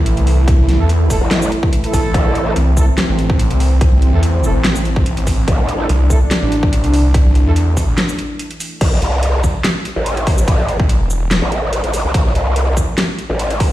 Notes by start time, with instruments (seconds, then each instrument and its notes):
Already playing: detuned saw bass A1, supersaw synth E3 A3 E4
0.06 closed hi-hat
0.17 detuned saw bass C2, closed hi-hat
0.27 open hi-hat
0.48 kick, closed hi-hat
0.59 detuned saw bass C2
0.69 snare, closed hi-hat
0.79 detuned saw bass E2, brass ensemble A3 E4 A4
0.89 closed hi-hat
1.10 brass ensemble A3 E4 A4, kick, open hi-hat, shaker
1.21 wobble bass A1
1.31 snare, clap, closed hi-hat
1.42 shaker
1.52 closed hi-hat
1.63 kick
1.73 closed hi-hat
1.84 brass ensemble A3 E4 A4, closed hi-hat
1.94 detuned saw bass A#1, kick, open hi-hat, shaker
2.14 wobble bass A1, supersaw synth C4, kick, closed hi-hat
2.35 closed hi-hat
2.46 brass ensemble A3 E4 A4
2.56 detuned saw bass C2, closed hi-hat
2.77 brass ensemble A3 E4 A4, kick, shaker
2.98 snare, clap, closed hi-hat
3.09 detuned saw bass A1
3.19 closed hi-hat
3.30 kick
3.39 closed hi-hat
3.50 detuned saw bass C2, closed hi-hat
3.60 open hi-hat
3.81 kick, closed hi-hat
3.92 detuned saw bass C2
4.02 closed hi-hat
4.13 detuned saw bass E2, brass ensemble A3 E4 A4
4.23 closed hi-hat
4.44 brass ensemble A3 E4 A4, shaker
4.55 detuned saw bass A1
4.64 snare, clap, closed hi-hat
4.75 detuned saw bass A1, shaker
4.85 closed hi-hat
4.96 kick
5.06 closed hi-hat
5.17 detuned saw bass A1, closed hi-hat
5.27 kick, open hi-hat, shaker
5.48 wobble bass A1, supersaw synth D4, kick, closed hi-hat
5.69 closed hi-hat
5.80 brass ensemble A3 E4 A4
5.89 detuned saw bass C2, closed hi-hat
6.10 brass ensemble A3 E4 A4, kick, shaker
6.31 snare, clap, closed hi-hat
6.42 detuned saw bass A1
6.52 closed hi-hat
6.63 kick
6.73 closed hi-hat
6.84 detuned saw bass C2, closed hi-hat
6.94 open hi-hat
7.14 kick, closed hi-hat
7.25 detuned saw bass C2
7.35 closed hi-hat
7.46 detuned saw bass E2, brass ensemble A3 E4 A4
7.56 closed hi-hat
7.77 kick, open hi-hat, shaker
7.88 detuned saw bass A1
7.98 snare, clap, closed hi-hat
8.09 shaker
8.19 closed hi-hat
8.39 closed hi-hat
8.51 closed hi-hat
8.60 open hi-hat, shaker
8.81 wobble bass A1, kick, closed hi-hat, crash, ride
9.02 wobble bass C2, closed hi-hat
9.23 closed hi-hat, ride
9.44 detuned saw bass C2, kick, shaker
9.64 snare, clap, closed hi-hat, ride
9.85 closed hi-hat
9.96 wobble bass A1
10.06 closed hi-hat, ride
10.17 closed hi-hat
10.27 kick, open hi-hat
10.38 shaker
10.48 kick, closed hi-hat, ride
10.69 closed hi-hat
10.80 detuned saw bass A1, kick
10.89 detuned saw bass A1, closed hi-hat, ride
11.00 detuned saw bass E1
11.10 shaker
11.31 snare, clap, closed hi-hat, ride
11.42 wobble bass A1
11.52 closed hi-hat
11.73 closed hi-hat, ride
11.84 wobble bass A1, closed hi-hat
11.94 open hi-hat, shaker
12.04 wobble bass C2
12.14 wobble bass A1, kick, closed hi-hat, ride
12.35 wobble bass C2, closed hi-hat
12.56 closed hi-hat, ride
12.77 detuned saw bass C2, kick, shaker
12.98 snare, clap, closed hi-hat, ride
13.19 closed hi-hat
13.30 wobble bass A1
13.39 closed hi-hat, ride
13.51 closed hi-hat
13.60 kick, open hi-hat